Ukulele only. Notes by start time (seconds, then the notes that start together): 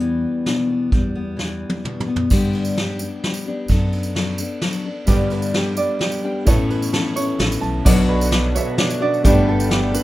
5.08 G4
5.32 B4
5.55 G4
5.77 D5
6.01 G4
6.25 G5
6.47 A4
6.70 B4
6.93 A4
7.16 C#5
7.39 A4
7.61 A5
7.85 D4
8.09 B4
8.32 D4
8.55 C#5
8.79 D4
9.02 D5
9.25 G4
9.49 A4
9.72 G4
9.94 B4